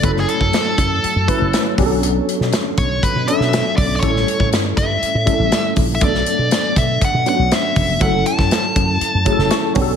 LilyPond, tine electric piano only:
\new Staff \with { instrumentName = "Tine electric piano" } { \time 4/4 \key b \minor \tempo 4 = 120 << { r1 | r1 | r1 | r1 |
r2. cis'''4 | } \\ { <fis a cis' e' a'>4. r4 <fis a cis' e' b'>4 <fis b cis' d' g' a'>8~ | <fis b cis' d' g' a'>4 r4. <fis b cis' d' a'>4 r8 | <g a cis' e' a'>4. r4 <g a cis' e' a'>4 r8 | <fis a b d' a'>4. r4 <fis b cis' d' fis'>4 r8 |
<fis a cis' e' a'>4. r4 <fis a cis' e' gis' a'>4 <fis b cis' d' g' a'>8 | } >> }